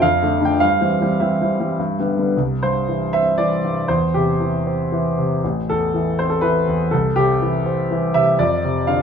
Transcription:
0.02 0.21 F2 medium
0.02 0.45 F5 medium
0.22 0.39 D3 soft
0.22 0.40 A3 soft
0.22 0.40 D4 soft
0.41 0.59 D3 soft
0.41 0.59 A3 soft
0.41 0.59 D4 soft
0.45 0.60 G5 medium
0.60 0.80 G2 soft
0.60 1.20 F5 medium
0.81 0.99 E3 soft
0.81 0.99 G3 soft
0.81 0.99 C4 soft
1.01 1.19 E3 soft
1.01 1.19 G3 soft
1.01 1.19 C4 soft
1.20 1.38 E3 soft
1.20 1.38 G3 soft
1.20 1.39 C4 soft
1.20 2.07 E5 soft
1.41 1.58 E3 soft
1.41 1.58 G3 soft
1.41 1.59 C4 soft
1.59 1.77 E3 soft
1.59 1.77 G3 soft
1.59 1.77 C4 soft
1.79 1.97 G2 soft
1.99 2.16 D3 soft
1.99 2.16 G3 soft
1.99 2.16 B3 soft
2.17 2.34 D3 soft
2.17 2.34 G3 soft
2.17 2.34 B3 soft
2.37 3.86 C2 soft
2.62 3.04 G2 soft
2.62 3.14 C5 medium
2.88 3.28 E3 soft
3.13 3.54 C4 soft
3.13 3.38 E5 medium
3.38 3.79 E3 soft
3.38 3.89 D5 medium
3.64 3.89 G2 soft
3.88 5.39 E2 soft
3.88 4.14 C5 medium
4.14 4.56 C3 soft
4.14 5.17 G4 medium
4.40 4.81 E3 soft
4.66 5.07 C4 soft
4.92 5.33 E3 soft
5.18 5.43 C3 soft
5.44 6.88 A1 soft
5.69 6.09 E2 soft
5.69 6.18 A4 medium
5.94 6.32 E3 soft
6.19 6.58 C4 soft
6.19 6.30 C5 medium
6.30 6.42 A4 soft
6.41 6.82 E3 soft
6.41 6.91 B4 medium
6.68 6.92 E2 soft
6.91 8.35 C2 soft
6.91 7.16 A4 medium
7.16 7.56 C3 soft
7.16 8.14 G4 medium
7.42 7.81 E3 soft
7.66 8.05 C4 soft
7.91 8.30 E3 soft
8.14 8.39 C3 soft
8.14 8.39 E5 medium
8.39 9.02 F2 medium
8.39 8.88 D5 medium
8.64 9.02 C3 soft
8.87 9.02 D3 soft
8.87 9.00 F5 medium

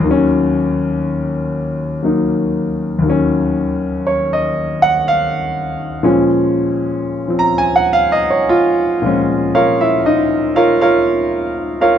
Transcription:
0.00 2.97 D#2 medium
0.00 3.01 D#3 medium
0.07 2.01 F#3 medium
0.07 3.07 C#4 medium
2.03 3.03 F#3 soft
2.03 3.04 A#3 soft
2.03 3.05 D#4 soft
2.99 6.01 D#2 medium
2.99 6.03 D#3 medium
3.06 6.05 F#3 medium
3.06 6.03 C#4 medium
4.07 4.30 C#5 medium
4.33 4.78 D#5 medium
4.82 5.05 F#5 loud
5.08 5.32 F5 medium
6.03 9.00 A#2 medium
6.03 7.26 F3 medium
6.03 9.03 G#3 medium
6.03 9.04 C#4 medium
7.28 9.02 F3 soft
7.28 9.04 C4 soft
7.39 7.52 A#5 medium
7.58 7.80 G#5 medium
7.76 8.02 F#5 medium
7.93 8.10 F5 medium
8.12 8.26 D#5 medium
8.31 8.54 C#5 medium
8.49 8.66 F4 medium
9.02 11.98 A#2 medium
9.02 11.98 F3 soft
9.02 11.98 G#3 medium
9.06 11.98 C#4 medium
9.55 9.79 F4 medium
9.55 9.79 A#4 medium
9.55 9.79 C#5 medium
9.55 9.79 F5 medium
9.81 10.04 E4 medium
9.81 10.04 E5 medium
10.06 10.51 D#4 medium
10.06 10.51 D#5 medium
10.56 10.79 F4 medium
10.56 10.79 A#4 medium
10.56 10.80 C#5 medium
10.56 10.79 F5 medium
10.81 11.21 F4 medium
10.81 11.21 A#4 medium
10.81 11.21 C#5 medium
10.81 11.21 F5 medium
11.81 11.98 F4 medium
11.81 11.98 A#4 medium
11.81 11.98 C#5 medium
11.81 11.98 F5 medium

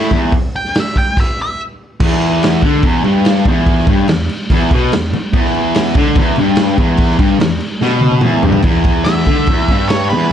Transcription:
0.00 0.11 A2 loud
0.00 0.18 E4 loud
0.11 0.32 E2 loud
0.11 kick medium
0.32 kick loud
0.32 open hi-hat medium
0.56 0.75 G5 loud
0.65 snare soft
0.74 snare loud
0.74 open hi-hat medium
0.80 0.97 E5 medium
0.96 1.17 G5 medium
0.96 kick medium
1.17 1.39 E5 loud
1.17 kick loud
1.17 crash loud
1.42 1.60 E5 loud
2.00 2.62 E2 loud
2.00 kick loud
2.00 crash loud
2.00 crash medium
2.12 snare soft
2.22 crash medium
2.43 snare loud
2.43 crash loud
2.62 2.83 D3 medium
2.62 kick loud
2.62 crash medium
2.83 3.03 E2 medium
2.83 kick loud
2.83 crash medium
3.04 3.45 G2 loud
3.04 crash medium
3.25 snare loud
3.25 crash medium
3.45 3.87 E2 loud
3.45 kick loud
3.45 crash medium
3.66 kick loud
3.66 crash medium
3.79 snare soft
3.87 4.08 G2 loud
3.87 kick loud
3.87 crash medium
4.08 4.26 E2 medium
4.08 snare loud
4.08 crash loud
4.29 crash medium
4.50 4.71 E2 loud
4.50 kick loud
4.50 crash medium
4.71 4.92 B2 loud
4.71 kick loud
4.71 crash medium
4.92 5.08 E2 medium
4.92 snare loud
4.92 crash loud
5.13 muted distorted electric guitar stroke medium
5.13 crash medium
5.33 5.95 E2 loud
5.33 kick loud
5.33 crash medium
5.46 snare soft
5.54 crash medium
5.75 snare loud
5.75 crash medium
5.94 6.16 D3 loud
5.94 kick loud
5.94 crash medium
6.15 6.37 E2 loud
6.15 kick loud
6.15 crash medium
6.36 6.78 G2 loud
6.36 crash medium
6.56 snare loud
6.56 crash medium
6.78 7.18 E2 loud
6.78 kick medium
6.78 crash medium
6.97 kick loud
6.97 crash medium
7.10 snare soft
7.18 7.39 G2 loud
7.18 kick loud
7.18 crash medium
7.40 7.57 E2 medium
7.40 snare loud
7.40 crash medium
7.60 crash medium
7.81 8.23 B2 medium
7.81 snare medium
8.01 high tom medium
8.11 high tom medium
8.21 8.43 E2 loud
8.21 mid tom medium
8.43 8.62 G2 medium
8.43 floor tom loud
8.52 floor tom medium
8.62 9.26 E2 loud
8.62 kick loud
8.62 crash medium
8.84 kick loud
8.84 crash medium
9.04 9.86 E5 medium
9.04 snare loud
9.04 crash medium
9.25 9.47 D3 loud
9.25 kick medium
9.25 crash medium
9.46 9.70 E2 medium
9.46 kick loud
9.46 crash medium
9.68 10.11 G2 medium
9.68 kick medium
9.68 crash medium
9.88 10.09 C#5 medium
9.88 snare loud
9.88 crash medium
10.10 10.32 E2 loud
10.10 10.30 B4 medium
10.10 crash soft

